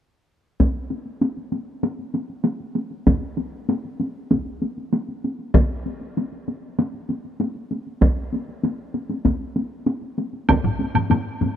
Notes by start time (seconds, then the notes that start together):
0.60 taiko, taiko high
0.75 taiko high
0.91 taiko high
1.06 taiko high
1.21 taiko high
1.37 taiko high
1.52 taiko high
1.83 taiko high
1.99 taiko high
2.14 taiko high
2.30 taiko high
2.44 taiko high
2.60 taiko high
2.76 taiko high
2.91 taiko high
3.07 taiko, taiko high
3.22 taiko high
3.38 taiko high
3.69 taiko high
3.85 taiko high
4.00 taiko high
4.31 taiko, taiko high
4.47 taiko high
4.62 taiko high
4.78 taiko high
4.93 taiko high
5.09 taiko high
5.24 taiko high
5.39 taiko high
5.54 taiko, taiko high
5.70 taiko high
5.86 taiko high
6.01 taiko high
6.17 taiko high
6.32 taiko high
6.48 taiko high
6.79 taiko high
6.94 taiko high
7.09 taiko high
7.25 taiko high
7.40 taiko high
7.56 taiko high
7.71 taiko high
7.87 taiko high
8.02 taiko, taiko high
8.17 taiko high
8.33 taiko high
8.48 taiko high
8.63 taiko high
8.94 taiko high
9.10 taiko high
9.25 taiko, taiko high
9.41 taiko high
9.56 taiko high
9.86 taiko high
10.02 taiko high
10.18 taiko high
10.33 taiko high
10.49 taiko, taiko high, high woodblock
10.64 taiko low-mid
10.79 taiko high
10.95 taiko low-mid, taiko high, high woodblock
11.10 taiko low-mid, taiko high, high woodblock
11.41 taiko low-mid, taiko high